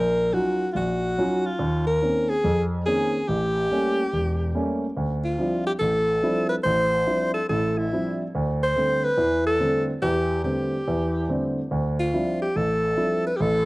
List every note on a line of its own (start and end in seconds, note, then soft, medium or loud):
0.00 0.28 A#1 medium
0.00 0.35 A#4 loud
0.33 0.62 F#3 soft
0.33 0.63 C#4 soft
0.33 0.62 D#4 soft
0.33 0.63 F4 medium
0.33 0.71 F#4 medium
0.73 1.12 A#1 medium
0.73 0.78 F4 medium
0.73 1.48 F#4 medium
1.18 1.47 F#3 medium
1.18 1.47 C#4 medium
1.18 1.47 D#4 soft
1.18 1.47 F4 medium
1.46 1.86 F4 medium
1.59 1.96 D#2 medium
1.87 2.31 A#4 medium
2.02 2.31 D#3 soft
2.02 2.31 A#3 soft
2.02 2.31 C4 soft
2.02 2.31 C#4 soft
2.29 2.63 G#4 medium
2.44 2.80 F2 medium
2.86 3.15 D#3 medium
2.86 3.16 A#3 medium
2.86 3.16 C4 soft
2.86 3.16 C#4 medium
2.86 3.30 G#4 medium
3.28 3.65 A1 medium
3.28 4.82 G4 loud
3.71 3.99 G3 soft
3.71 4.00 A3 soft
3.71 4.00 A#3 soft
3.71 4.00 C#4 medium
4.13 4.49 E1 medium
4.54 4.83 G3 soft
4.54 4.84 A3 soft
4.54 4.84 A#3 soft
4.54 4.84 C#4 medium
4.97 5.33 D2 medium
5.24 5.63 F4 medium
5.38 5.67 F3 medium
5.38 5.68 G3 soft
5.38 5.68 C4 soft
5.38 5.68 D4 soft
5.38 5.68 E4 soft
5.67 5.73 G4 medium
5.79 6.17 A1 medium
5.79 6.46 A4 loud
6.23 6.52 F3 medium
6.23 6.52 G3 soft
6.23 6.52 C4 soft
6.23 6.52 D4 soft
6.23 6.52 E4 medium
6.49 6.56 B4 medium
6.64 7.01 A1 medium
6.64 7.30 C5 loud
7.07 7.36 F3 soft
7.07 7.36 G3 soft
7.07 7.36 C4 soft
7.07 7.36 D4 soft
7.07 7.36 E4 medium
7.34 7.48 A4 medium
7.49 7.86 A1 medium
7.49 7.86 A2 medium
7.49 7.79 A4 medium
7.78 8.19 E4 medium
7.93 8.21 F3 soft
7.93 8.21 G3 soft
7.93 8.21 C4 soft
7.93 8.21 D4 soft
7.93 8.22 E4 soft
8.35 8.71 D2 medium
8.63 9.06 C5 loud
8.76 9.05 D3 soft
8.76 9.05 G3 soft
8.76 9.05 A3 soft
8.76 9.05 C4 medium
9.04 9.46 B4 loud
9.17 9.54 E2 medium
9.17 9.54 E3 medium
9.47 9.85 A4 medium
9.59 9.89 D3 medium
9.59 9.89 G3 soft
9.59 9.89 A3 soft
9.59 9.89 C4 medium
10.02 10.39 E2 medium
10.02 10.39 E3 medium
10.02 10.41 G4 loud
10.44 10.73 D3 soft
10.44 10.73 G3 soft
10.44 10.73 A3 soft
10.44 10.74 C4 soft
10.44 11.52 G4 medium
10.88 11.24 E2 medium
10.88 11.24 E3 medium
11.29 11.58 D3 medium
11.29 11.58 G3 soft
11.29 11.58 A3 soft
11.29 11.58 C4 medium
11.71 12.07 D2 medium
12.00 12.38 F4 medium
12.13 12.42 F3 soft
12.13 12.42 G3 soft
12.13 12.42 C4 soft
12.13 12.42 D4 soft
12.13 12.43 E4 medium
12.42 12.58 G4 medium
12.56 12.92 A1 medium
12.56 13.26 A4 medium
12.97 13.26 F3 soft
12.97 13.26 G3 soft
12.97 13.26 C4 soft
12.97 13.26 D4 soft
12.97 13.26 E4 medium
13.27 13.38 B4 medium
13.36 13.65 A1 medium
13.36 13.43 G4 medium
13.42 13.65 A4 loud